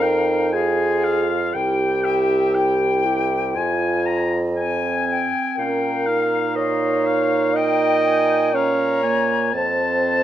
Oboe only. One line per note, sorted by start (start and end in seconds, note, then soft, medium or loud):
0.02 0.54 G5 medium
0.52 1.05 G#5 medium
1.04 1.55 F5 medium
1.54 2.06 G5 medium
2.04 2.56 E5 medium
2.55 3.38 G5 medium
3.55 4.07 G#5 medium
4.06 4.39 A#5 medium
4.56 5.53 G#5 medium
5.57 6.08 G5 medium
6.06 6.57 F5 medium
6.55 7.07 D#5 medium
7.06 7.58 F5 medium
7.56 8.57 G5 medium
8.55 9.02 F5 medium
9.03 9.55 G#5 medium
9.54 10.23 A5 medium